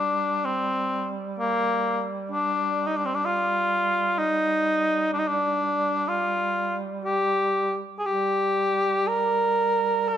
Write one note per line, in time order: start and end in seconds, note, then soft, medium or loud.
0.00 7.88 G3 soft
0.00 0.47 D4 medium
0.45 1.11 C4 medium
1.39 2.04 A#3 medium
2.32 2.89 D4 medium
2.87 2.98 D#4 medium
2.97 3.07 D4 medium
3.06 3.16 C4 medium
3.15 3.27 D4 medium
3.25 4.19 F4 medium
4.18 5.11 D#4 medium
5.13 5.21 D4 medium
5.19 5.29 D#4 medium
5.28 6.10 D4 medium
6.08 6.77 F4 medium
7.05 7.75 G4 medium
7.99 8.07 G#4 medium
8.05 10.17 G3 soft
8.05 9.09 G4 medium
9.08 10.10 A#4 medium
10.08 10.17 G#4 medium